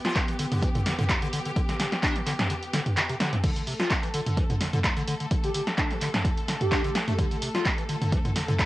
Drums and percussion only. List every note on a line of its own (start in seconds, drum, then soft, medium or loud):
0.05 snare medium
0.05 closed hi-hat soft
0.16 kick loud
0.16 clap loud
0.16 closed hi-hat medium
0.28 closed hi-hat soft
0.39 open hi-hat loud
0.52 closed hi-hat medium
0.52 mid tom medium
0.62 kick loud
0.62 closed hi-hat medium
0.75 closed hi-hat soft
0.75 mid tom loud
0.86 snare medium
0.86 open hi-hat loud
0.99 closed hi-hat soft
0.99 mid tom loud
1.09 kick loud
1.09 clap loud
1.09 closed hi-hat medium
1.22 closed hi-hat soft
1.33 open hi-hat loud
1.45 closed hi-hat soft
1.56 kick loud
1.56 closed hi-hat medium
1.69 snare soft
1.69 closed hi-hat medium
1.80 snare medium
1.80 open hi-hat loud
1.92 snare medium
1.92 closed hi-hat soft
2.03 kick loud
2.03 clap loud
2.03 closed hi-hat medium
2.16 closed hi-hat soft
2.27 clap soft
2.27 open hi-hat loud
2.39 snare medium
2.39 closed hi-hat medium
2.39 mid tom medium
2.50 closed hi-hat medium
2.63 closed hi-hat soft
2.73 snare medium
2.73 open hi-hat loud
2.86 closed hi-hat soft
2.86 mid tom loud
2.97 clap loud
2.97 closed hi-hat medium
3.09 closed hi-hat soft
3.20 snare medium
3.20 open hi-hat loud
3.33 closed hi-hat soft
3.33 mid tom medium
3.44 kick loud
3.44 closed hi-hat medium
3.44 crash medium
3.56 closed hi-hat medium
3.67 open hi-hat loud
3.80 snare medium
3.80 closed hi-hat soft
3.90 kick loud
3.90 clap loud
3.90 closed hi-hat medium
4.03 closed hi-hat soft
4.14 open hi-hat loud
4.26 closed hi-hat medium
4.26 mid tom medium
4.37 kick loud
4.37 closed hi-hat medium
4.50 closed hi-hat soft
4.50 mid tom loud
4.61 snare medium
4.61 open hi-hat loud
4.73 closed hi-hat soft
4.73 mid tom medium
4.84 kick loud
4.84 clap loud
4.84 closed hi-hat medium
4.97 closed hi-hat soft
5.08 open hi-hat loud
5.20 closed hi-hat soft
5.31 kick loud
5.31 closed hi-hat medium
5.44 closed hi-hat medium
5.54 open hi-hat loud
5.67 snare medium
5.67 closed hi-hat soft
5.78 kick loud
5.78 clap loud
5.78 closed hi-hat medium
5.91 closed hi-hat soft
6.01 clap soft
6.01 open hi-hat loud
6.14 snare medium
6.14 closed hi-hat medium
6.14 mid tom medium
6.25 kick loud
6.25 closed hi-hat medium
6.38 closed hi-hat soft
6.48 snare medium
6.48 open hi-hat loud
6.61 closed hi-hat soft
6.61 mid tom medium
6.72 kick loud
6.72 clap loud
6.72 closed hi-hat medium
6.84 closed hi-hat soft
6.95 snare medium
6.95 open hi-hat loud
7.08 closed hi-hat soft
7.08 mid tom medium
7.19 kick loud
7.19 closed hi-hat medium
7.31 closed hi-hat soft
7.42 open hi-hat loud
7.55 snare medium
7.55 closed hi-hat soft
7.65 kick loud
7.65 clap loud
7.65 closed hi-hat medium
7.78 closed hi-hat soft
7.89 open hi-hat loud
8.02 closed hi-hat medium
8.02 mid tom medium
8.12 kick loud
8.12 closed hi-hat medium
8.25 closed hi-hat soft
8.25 mid tom medium
8.36 snare medium
8.36 open hi-hat loud
8.48 closed hi-hat soft
8.48 mid tom loud
8.59 kick loud
8.59 clap loud
8.59 closed hi-hat medium